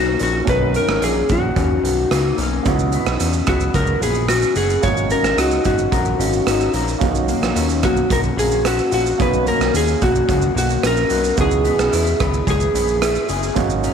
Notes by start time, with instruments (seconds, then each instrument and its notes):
Already playing: analog synth bass B1, clean electric guitar B2 D#3 A#3 C#4 A#4, upright piano C#4 D#4 F#4 A#4, electric slide guitar F#4
0.19 analog synth bass A#1, clean electric guitar C#4, electric slide guitar F#4, closed hi-hat
0.45 analog synth bass B1, clean electric guitar B2, upright piano C#4 D#4 F#4, kick, closed hi-hat
0.49 upright piano A#4, electric slide guitar B4
0.74 clean electric guitar D#3, electric slide guitar A#4, closed hi-hat
0.88 analog synth bass G#1, cross-stick
1.01 analog synth bass A#1, clean electric guitar A#3, electric slide guitar G#4, closed hi-hat
1.28 analog synth bass A#1, clean electric guitar D#3, electric slide guitar F#4, kick, closed hi-hat
1.56 analog synth bass D#2, clean electric guitar C#4, kick, closed hi-hat
1.83 analog synth bass B1, clean electric guitar D#3, closed hi-hat
2.11 analog synth bass C#2, clean electric guitar A#3, cross-stick, closed hi-hat
2.38 analog synth bass B1, clean electric guitar C#4, closed hi-hat
2.63 analog synth bass C#2, clean electric guitar C#3, upright piano B3 D#4 E4, kick, closed hi-hat, shaker
2.68 upright piano F#4
2.79 shaker
2.92 clean electric guitar B3, closed hi-hat, shaker
3.06 analog synth bass B1, cross-stick, shaker
3.20 analog synth bass E2, clean electric guitar C#4, closed hi-hat, shaker
3.33 shaker
3.47 analog synth bass C#2, clean electric guitar B3, electric slide guitar F#4, kick, cross-stick, closed hi-hat, shaker
3.60 shaker
3.74 analog synth bass C#2, clean electric guitar F#4, electric slide guitar A#4, kick, closed hi-hat, shaker
3.87 shaker
4.01 analog synth bass A#1, clean electric guitar B3, electric slide guitar G#4, closed hi-hat, shaker
4.15 shaker
4.29 clean electric guitar C#4, electric slide guitar F#4, cross-stick, closed hi-hat, shaker
4.42 shaker
4.55 analog synth bass F#1, clean electric guitar F#4, electric slide guitar G#4, closed hi-hat, shaker
4.70 shaker
4.81 analog synth bass G#1, clean electric guitar G#2, upright piano A#3 C#4 D#4, electric slide guitar C#5, kick, closed hi-hat, shaker
4.86 upright piano F#4
4.97 shaker
5.10 clean electric guitar C#4, electric slide guitar A#4, closed hi-hat, shaker
5.23 analog synth bass G#1, cross-stick, shaker
5.37 analog synth bass C#2, clean electric guitar D#4, electric slide guitar F#4, cross-stick, closed hi-hat, shaker
5.51 shaker
5.65 analog synth bass G#1, clean electric guitar C#4, electric slide guitar F#4, kick, closed hi-hat, shaker
5.78 shaker
5.92 analog synth bass A#1, clean electric guitar A#4, kick, closed hi-hat, shaker
6.05 shaker
6.19 analog synth bass G#1, upright piano A#3 C#4 D#4 F#4, clean electric guitar C#4, closed hi-hat, shaker
6.33 shaker
6.46 analog synth bass G#1, clean electric guitar D#4, cross-stick, closed hi-hat, shaker
6.60 shaker
6.74 analog synth bass A#1, clean electric guitar A#4, closed hi-hat, shaker
6.88 shaker
6.99 analog synth bass B1, upright piano A#3 C#4 D#4, kick, closed hi-hat, shaker
7.03 upright piano F#4
7.15 shaker
7.28 clean electric guitar A#3, closed hi-hat, shaker
7.42 analog synth bass A#1, cross-stick, shaker
7.55 analog synth bass D#2, clean electric guitar C#4, closed hi-hat, shaker
7.69 shaker
7.83 analog synth bass B1, clean electric guitar A#3, electric slide guitar F#4, kick, cross-stick, closed hi-hat, shaker
7.97 shaker
8.10 analog synth bass B1, clean electric guitar F#4, electric slide guitar A#4, kick, closed hi-hat, shaker
8.23 shaker
8.37 analog synth bass A#1, clean electric guitar A#3, electric slide guitar G#4, closed hi-hat, shaker
8.51 shaker
8.65 clean electric guitar C#4, electric slide guitar F#4, cross-stick, closed hi-hat, shaker
8.79 shaker
8.92 analog synth bass A#1, clean electric guitar F#4, electric slide guitar F#4, closed hi-hat, shaker
9.06 shaker
9.17 analog synth bass B1, clean electric guitar B2, upright piano A#3 C#4 D#4, kick, closed hi-hat, shaker
9.22 upright piano F#4, electric slide guitar B4
9.34 shaker
9.46 clean electric guitar A#3, electric slide guitar A#4, closed hi-hat, shaker
9.60 analog synth bass B1, cross-stick, shaker
9.73 analog synth bass D#2, clean electric guitar C#4, electric slide guitar G#4, closed hi-hat, shaker
9.88 shaker
10.00 analog synth bass B1, clean electric guitar A#3, electric slide guitar F#4, kick, closed hi-hat, shaker
10.15 shaker
10.28 analog synth bass C#2, clean electric guitar F#4, kick, closed hi-hat, shaker
10.42 shaker
10.55 analog synth bass B1, clean electric guitar A#3, electric slide guitar F#4, closed hi-hat, shaker
10.70 shaker
10.83 analog synth bass A#1, clean electric guitar C#4, electric slide guitar A#4, cross-stick, closed hi-hat, shaker
10.97 shaker
11.09 analog synth bass B1, clean electric guitar F#4, closed hi-hat, shaker
11.24 shaker
11.35 analog synth bass C#2, clean electric guitar C#3, upright piano B3 D#4 E4, kick, closed hi-hat, shaker
11.40 upright piano F#4, electric slide guitar G#4
11.51 shaker
11.64 clean electric guitar B3, closed hi-hat, shaker
11.79 analog synth bass B1, cross-stick, shaker
11.91 analog synth bass E2, clean electric guitar E4, closed hi-hat, shaker
12.06 shaker
12.20 analog synth bass C#2, clean electric guitar B3, kick, cross-stick, closed hi-hat, shaker
12.34 shaker
12.47 analog synth bass C#2, clean electric guitar G#4, electric slide guitar G#4, kick, closed hi-hat, shaker
12.60 shaker
12.75 analog synth bass A#1, clean electric guitar B3, closed hi-hat, shaker
12.88 shaker
13.02 clean electric guitar E4, cross-stick, closed hi-hat, shaker
13.15 shaker
13.29 analog synth bass F#1, clean electric guitar G#4, closed hi-hat, shaker
13.43 shaker
13.54 analog synth bass G#1, clean electric guitar G#2, upright piano A#3 C#4 D#4, kick, closed hi-hat, shaker
13.59 upright piano F#4
13.70 shaker
13.84 clean electric guitar C#4, closed hi-hat, shaker